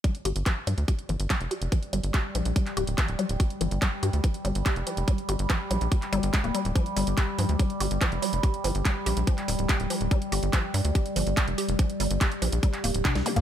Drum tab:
HH |xxxxx-xxxxxxxxxx|xxxxx-xxxxxxxxxx|xxxxx-xxxxxxxxxx|xxxxx-xxxxxxxxxx|
CP |----x-------x---|----x----x--x---|----x-------x---|----x----x--x---|
SD |----------------|----------------|----------------|----------------|
T1 |----------------|----------------|----------------|----------------|
T2 |----------------|----------------|----------------|----------------|
BD |o---o---o---o---|o---o---o---o---|o---o---o---o---|o---o---o---o---|

HH |xxoxx-oxxxoxxxox|xxoxx-oxxxoxxxox|xxoxx-oxxxoxxxox|xxoxxxoxxxoxxxox|
CP |----x-------x---|----x----x--x---|----x-------x---|----x----x--x---|
SD |----------------|----------------|----------------|-------------o--|
T1 |----------------|----------------|----------------|------------o---|
T2 |----------------|----------------|----------------|---------------o|
BD |o---o---o---o---|o---o---o---o---|o---o---o---o---|o---o---o---o---|